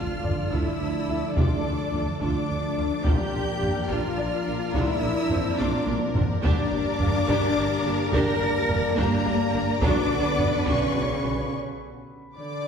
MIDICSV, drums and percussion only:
0, 0, Header, 1, 2, 480
1, 0, Start_track
1, 0, Key_signature, -1, "minor"
1, 0, Tempo, 563380
1, 1167, Time_signature, 6, 3, 24, 8
1, 10801, End_track
2, 0, Start_track
2, 0, Title_t, "Taiko and cinematic ensemble drums"
2, 204, Note_on_c, 9, 43, 55
2, 289, Note_off_c, 9, 43, 0
2, 444, Note_on_c, 9, 41, 73
2, 529, Note_off_c, 9, 41, 0
2, 1168, Note_on_c, 9, 41, 104
2, 1253, Note_off_c, 9, 41, 0
2, 1646, Note_on_c, 9, 43, 53
2, 1731, Note_off_c, 9, 43, 0
2, 1885, Note_on_c, 9, 41, 73
2, 1970, Note_off_c, 9, 41, 0
2, 2604, Note_on_c, 9, 41, 105
2, 2689, Note_off_c, 9, 41, 0
2, 3082, Note_on_c, 9, 43, 59
2, 3168, Note_off_c, 9, 43, 0
2, 3320, Note_on_c, 9, 41, 74
2, 3406, Note_off_c, 9, 41, 0
2, 4037, Note_on_c, 9, 41, 104
2, 4122, Note_off_c, 9, 41, 0
2, 4519, Note_on_c, 9, 43, 61
2, 4604, Note_off_c, 9, 43, 0
2, 4761, Note_on_c, 9, 48, 67
2, 4846, Note_off_c, 9, 48, 0
2, 5001, Note_on_c, 9, 48, 92
2, 5086, Note_off_c, 9, 48, 0
2, 5243, Note_on_c, 9, 43, 102
2, 5328, Note_off_c, 9, 43, 0
2, 5484, Note_on_c, 9, 41, 111
2, 5569, Note_off_c, 9, 41, 0
2, 5966, Note_on_c, 9, 43, 66
2, 6052, Note_off_c, 9, 43, 0
2, 6204, Note_on_c, 9, 41, 83
2, 6289, Note_off_c, 9, 41, 0
2, 6923, Note_on_c, 9, 41, 111
2, 7008, Note_off_c, 9, 41, 0
2, 7406, Note_on_c, 9, 43, 66
2, 7491, Note_off_c, 9, 43, 0
2, 7646, Note_on_c, 9, 41, 82
2, 7731, Note_off_c, 9, 41, 0
2, 8365, Note_on_c, 9, 41, 114
2, 8450, Note_off_c, 9, 41, 0
2, 8848, Note_on_c, 9, 43, 66
2, 8934, Note_off_c, 9, 43, 0
2, 9084, Note_on_c, 9, 41, 79
2, 9170, Note_off_c, 9, 41, 0
2, 10801, End_track
0, 0, End_of_file